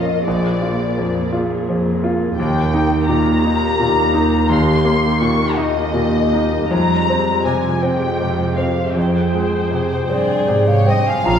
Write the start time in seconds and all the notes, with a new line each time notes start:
Already playing: A#1 F2 A#2 C#4 F4 A#4 D#5
0.27 A#1 A#3 G#4 D5
0.62 F4
0.98 F2
1.33 F4
1.69 F2
2.04 F4
2.37 D#2 A#3 G4 G5
2.74 D#4
3.08 A#2 A#5
3.44 D#4
3.80 A#2
4.14 D#4
4.49 D#2 C6
4.85 A#3
5.21 A#2 C#6
5.57 D#4 D#5
5.93 A#2
6.33 D#4
6.71 F2 G3 G#3 A#5
7.10 C4
7.45 C3 G#5
7.82 G#3 C4 G4 G5
8.21 C3
8.56 C4 F5
8.96 F2 G#4 C5 G5
9.33 G#3
9.71 C3
10.09 G2 C4 G#4 D5
10.48 G#2 C3
10.68 C#5 F5
10.87 G2 C4 D#5 G5
11.08 F5 G#5
11.24 A#1 C#4 F4 F5 A#5